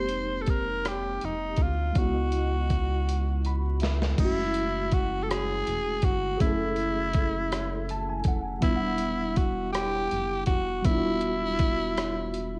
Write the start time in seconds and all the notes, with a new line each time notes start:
Already playing: F1 G#3 A#3 C4 D#4 G4 C5
0.09 closed hi-hat
0.41 A4
0.46 A#4, kick, closed hi-hat
0.85 G4, cross-stick, closed hi-hat
1.21 F1 D#4, closed hi-hat
1.57 D2, kick, closed hi-hat
1.62 F4
1.93 C#2 G#3 B3, kick, closed hi-hat
1.97 E4 F#4 D#5
2.02 F#4
2.32 closed hi-hat
2.70 kick, closed hi-hat
3.09 closed hi-hat
3.45 B5, closed hi-hat
3.80 E5, snare, closed hi-hat
4.02 snare
4.16 F#1 G#3 A3 C#4 E4, kick, closed hi-hat, crash
4.22 E4 F#4
4.54 closed hi-hat
4.92 F#4, kick, closed hi-hat
5.23 A4
5.30 G#4, cross-stick, closed hi-hat
5.67 E1, closed hi-hat
6.02 G1 F#4, kick, closed hi-hat
6.37 F#1 A3 E4 G#4, kick, closed hi-hat
6.42 C#4 E4
6.46 A4
6.76 closed hi-hat
7.13 kick, closed hi-hat
7.52 cross-stick, closed hi-hat
7.89 A5, closed hi-hat
8.09 G#5
8.24 F1 F#5, kick, closed hi-hat
8.60 E1 G3 B3 E4, kick, closed hi-hat
8.65 D4 E4
8.70 F4
8.76 F#5
8.98 closed hi-hat
9.36 F#4, kick, closed hi-hat
9.72 G4, cross-stick, closed hi-hat
10.11 F#1, closed hi-hat
10.46 F1 F#4, kick, closed hi-hat
10.82 E1 G3 B3 E4, kick, closed hi-hat
10.87 D4 E4 F4
10.97 F#4
11.21 closed hi-hat
11.59 kick, closed hi-hat
11.97 cross-stick, closed hi-hat
12.34 closed hi-hat